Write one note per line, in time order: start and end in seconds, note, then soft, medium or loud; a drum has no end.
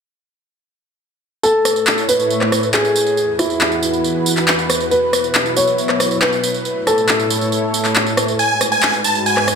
1.43 3.16 A2 medium
1.43 3.16 A3 medium
1.43 3.16 E4 medium
1.43 2.00 A4 medium
1.43 3.16 C#5 medium
1.43 tambourine soft
1.65 cross-stick medium
1.65 tambourine medium
1.76 tambourine soft
1.87 clap loud
1.87 tambourine soft
1.98 tambourine soft
2.09 2.65 B4 medium
2.09 tambourine medium
2.20 tambourine soft
2.30 tambourine soft
2.41 cross-stick medium
2.41 clap soft
2.52 cross-stick medium
2.52 tambourine medium
2.63 tambourine soft
2.74 3.30 G#4 medium
2.74 clap loud
2.74 tambourine soft
2.85 tambourine soft
2.96 tambourine medium
3.06 tambourine soft
3.17 4.90 E2 medium
3.17 4.90 E3 medium
3.17 4.90 F#4 medium
3.17 6.62 B4 medium
3.17 tambourine soft
3.39 4.83 E4 medium
3.39 cross-stick medium
3.39 tambourine medium
3.50 tambourine soft
3.61 clap loud
3.61 tambourine soft
3.72 tambourine soft
3.83 tambourine medium
3.93 tambourine soft
4.04 tambourine soft
4.26 tambourine medium
4.37 clap soft
4.37 tambourine soft
4.48 clap loud
4.48 tambourine soft
4.59 tambourine soft
4.70 cross-stick medium
4.70 tambourine medium
4.80 tambourine soft
4.91 6.64 B2 medium
4.91 6.64 F#3 medium
4.91 6.63 E4 medium
4.91 5.48 B4 medium
4.91 tambourine soft
5.13 cross-stick medium
5.13 tambourine medium
5.24 tambourine soft
5.35 clap loud
5.35 tambourine soft
5.46 tambourine soft
5.57 6.13 C#5 medium
5.57 tambourine medium
5.67 tambourine soft
5.78 tambourine soft
5.89 cross-stick medium
5.89 clap soft
6.00 cross-stick medium
6.00 tambourine medium
6.11 tambourine soft
6.22 6.78 B4 medium
6.22 clap loud
6.22 tambourine soft
6.33 tambourine soft
6.43 tambourine medium
6.54 tambourine soft
6.65 8.37 A2 medium
6.65 8.37 A3 medium
6.65 8.37 E4 medium
6.65 8.37 C#5 medium
6.65 tambourine soft
6.87 8.30 A4 medium
6.87 cross-stick medium
6.87 tambourine medium
6.98 tambourine soft
7.09 clap loud
7.09 tambourine soft
7.20 tambourine soft
7.30 tambourine medium
7.41 tambourine soft
7.52 tambourine soft
7.74 tambourine medium
7.85 clap soft
7.85 tambourine soft
7.96 clap loud
7.96 tambourine soft
8.06 tambourine soft
8.17 cross-stick medium
8.17 tambourine medium
8.28 tambourine soft
8.39 9.55 G#2 medium
8.39 9.55 G#3 medium
8.39 9.55 F#4 medium
8.39 9.55 B4 medium
8.39 8.61 G#5 medium
8.39 tambourine soft
8.61 cross-stick medium
8.61 tambourine medium
8.72 8.93 G#5 medium
8.72 tambourine soft
8.83 clap loud
8.83 tambourine soft
8.93 tambourine soft
9.04 9.19 A5 medium
9.04 tambourine medium
9.15 tambourine soft
9.26 9.47 G#5 medium
9.26 tambourine soft
9.37 cross-stick medium
9.37 clap soft
9.48 cross-stick medium
9.48 tambourine medium